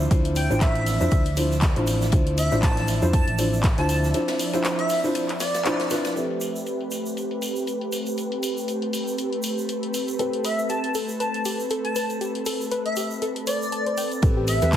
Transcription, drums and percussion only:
0.11 kick, closed hi-hat, ride, shaker
0.25 closed hi-hat, ride
0.36 open hi-hat, ride, shaker
0.51 shaker
0.61 kick, snare, clap, closed hi-hat, ride, shaker
0.75 closed hi-hat
0.86 snare, open hi-hat, shaker
1.01 shaker
1.11 kick, closed hi-hat, ride, shaker
1.26 closed hi-hat
1.37 open hi-hat, ride, shaker
1.51 snare, shaker
1.61 kick, snare, clap, closed hi-hat, ride, shaker
1.76 closed hi-hat
1.87 open hi-hat, ride, shaker
2.01 snare, shaker
2.12 kick, closed hi-hat, ride, shaker
2.27 closed hi-hat
2.38 open hi-hat, ride, shaker
2.51 snare, shaker
2.62 kick, snare, clap, closed hi-hat, ride, shaker
2.77 snare, closed hi-hat
2.88 snare, open hi-hat, ride, shaker
3.02 shaker
3.13 kick, closed hi-hat, ride, shaker
3.28 closed hi-hat
3.38 open hi-hat, ride, shaker
3.53 shaker
3.63 kick, snare, clap, closed hi-hat, ride
3.78 snare, closed hi-hat
3.89 open hi-hat, ride, shaker
4.04 snare, shaker
4.14 snare, closed hi-hat, ride, shaker
4.28 snare, closed hi-hat, ride
4.39 snare, open hi-hat, shaker
4.53 snare, closed hi-hat, ride, shaker
4.64 snare, clap, closed hi-hat, ride, shaker
4.79 closed hi-hat
4.89 snare, open hi-hat, shaker
5.04 shaker
5.15 closed hi-hat, ride, shaker
5.29 clap, closed hi-hat
5.40 snare, open hi-hat, ride, shaker
5.54 snare, closed hi-hat, ride, shaker
5.65 snare, clap, closed hi-hat, ride, shaker
5.79 snare, closed hi-hat, ride
5.90 snare, open hi-hat, ride, shaker
6.05 snare, ride, shaker
6.16 closed hi-hat, shaker
6.30 closed hi-hat
6.41 open hi-hat, shaker
6.56 shaker
6.66 closed hi-hat, shaker
6.81 closed hi-hat
6.91 open hi-hat, shaker
7.06 shaker
7.17 closed hi-hat, shaker
7.31 closed hi-hat
7.42 open hi-hat, shaker
7.56 shaker
7.67 closed hi-hat, shaker
7.81 closed hi-hat
7.92 open hi-hat, shaker
8.06 closed hi-hat, shaker
8.17 closed hi-hat, shaker
8.32 closed hi-hat
8.43 open hi-hat, shaker
8.57 shaker
8.68 closed hi-hat, shaker
8.82 closed hi-hat
8.93 open hi-hat, shaker
9.07 shaker
9.18 closed hi-hat, shaker
9.33 closed hi-hat
9.43 open hi-hat, shaker
9.58 shaker
9.69 closed hi-hat, shaker
9.83 closed hi-hat
9.94 open hi-hat, shaker
10.08 closed hi-hat, shaker
10.19 closed hi-hat, shaker
10.33 closed hi-hat
10.45 open hi-hat, shaker
10.59 shaker
10.69 closed hi-hat, shaker
10.84 closed hi-hat
10.95 open hi-hat, shaker
11.08 shaker
11.20 closed hi-hat, shaker
11.34 closed hi-hat
11.45 open hi-hat, shaker
11.60 shaker
11.70 closed hi-hat, shaker
11.85 closed hi-hat
11.96 open hi-hat, shaker
12.10 closed hi-hat, shaker
12.21 closed hi-hat, shaker
12.35 closed hi-hat
12.46 open hi-hat, shaker
12.61 shaker
12.71 closed hi-hat, shaker
12.86 closed hi-hat
12.96 open hi-hat, shaker
13.10 shaker
13.22 closed hi-hat, shaker
13.36 closed hi-hat
13.47 open hi-hat, shaker
13.62 shaker
13.72 closed hi-hat, shaker
13.86 closed hi-hat
13.97 open hi-hat, shaker
14.12 closed hi-hat, shaker
14.22 kick, closed hi-hat, ride, shaker
14.47 open hi-hat, ride, shaker
14.61 snare, closed hi-hat, shaker
14.73 kick, snare, clap, closed hi-hat, ride, shaker

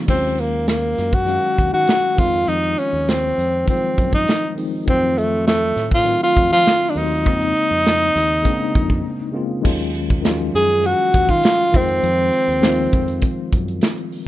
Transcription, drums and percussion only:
0.08 kick, crash
0.38 closed hi-hat
0.68 snare, closed hi-hat
0.98 snare, closed hi-hat
1.13 kick
1.28 closed hi-hat
1.58 kick, closed hi-hat
1.88 snare, closed hi-hat
2.18 kick, open hi-hat
2.34 closed hi-hat
2.49 closed hi-hat
2.64 closed hi-hat
2.79 closed hi-hat
3.09 snare, closed hi-hat
3.39 closed hi-hat
3.68 kick, closed hi-hat
3.98 kick, closed hi-hat
4.13 kick
4.28 snare, closed hi-hat
4.58 open hi-hat
4.88 kick, closed hi-hat
5.18 closed hi-hat
5.48 snare, closed hi-hat
5.78 snare, closed hi-hat
5.91 kick
6.06 closed hi-hat
6.37 kick, closed hi-hat
6.66 snare, closed hi-hat
6.96 open hi-hat
7.26 kick, closed hi-hat
7.42 closed hi-hat
7.57 closed hi-hat
7.87 snare, closed hi-hat
8.16 snare, closed hi-hat
8.45 kick, closed hi-hat
8.75 kick, closed hi-hat
8.90 kick
9.65 kick, crash
9.80 closed hi-hat
9.95 closed hi-hat
10.10 kick, closed hi-hat
10.25 snare, closed hi-hat
10.39 closed hi-hat
10.55 snare, closed hi-hat
10.70 closed hi-hat
10.84 closed hi-hat
10.99 closed hi-hat
11.14 kick, closed hi-hat
11.29 kick, closed hi-hat
11.44 snare, closed hi-hat
11.74 kick, open hi-hat
11.88 closed hi-hat
12.04 closed hi-hat
12.33 closed hi-hat
12.49 closed hi-hat
12.63 snare, closed hi-hat
12.93 kick, closed hi-hat
13.08 closed hi-hat
13.22 kick, closed hi-hat
13.53 kick, closed hi-hat
13.68 closed hi-hat
13.81 snare, closed hi-hat
13.98 closed hi-hat
14.12 open hi-hat

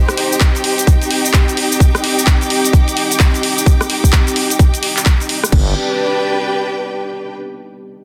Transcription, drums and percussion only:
0.08 cross-stick, closed hi-hat, cabasa
0.17 open hi-hat
0.33 cabasa
0.40 kick, clap, closed hi-hat, cabasa
0.55 closed hi-hat, cabasa
0.64 open hi-hat
0.78 closed hi-hat, cabasa
0.87 kick, closed hi-hat, cabasa
1.02 closed hi-hat, cabasa
1.11 open hi-hat
1.25 closed hi-hat, cabasa
1.34 kick, clap, closed hi-hat, cabasa
1.48 closed hi-hat, cabasa
1.57 open hi-hat
1.72 cabasa
1.80 kick, closed hi-hat, cabasa
1.95 cross-stick, closed hi-hat, cabasa
2.04 open hi-hat
2.19 cabasa
2.27 kick, clap, closed hi-hat, cabasa
2.41 closed hi-hat, cabasa
2.50 open hi-hat
2.65 closed hi-hat, cabasa
2.73 kick, closed hi-hat, cabasa
2.88 closed hi-hat, cabasa
2.97 open hi-hat
3.11 closed hi-hat, cabasa
3.20 kick, clap, closed hi-hat, cabasa
3.34 closed hi-hat, cabasa
3.43 open hi-hat
3.58 cabasa
3.66 kick, closed hi-hat, cabasa
3.81 cross-stick, closed hi-hat, cabasa
3.90 open hi-hat
4.04 kick, closed hi-hat, cabasa
4.13 kick, clap, closed hi-hat, cabasa
4.27 closed hi-hat, cabasa
4.36 open hi-hat
4.50 closed hi-hat, cabasa
4.59 kick, closed hi-hat, cabasa
4.74 closed hi-hat, cabasa
4.83 open hi-hat
4.97 clap, closed hi-hat, cabasa
5.06 kick, clap, closed hi-hat, cabasa
5.20 closed hi-hat, cabasa
5.29 open hi-hat
5.44 cross-stick, closed hi-hat, cabasa
5.52 kick, crash

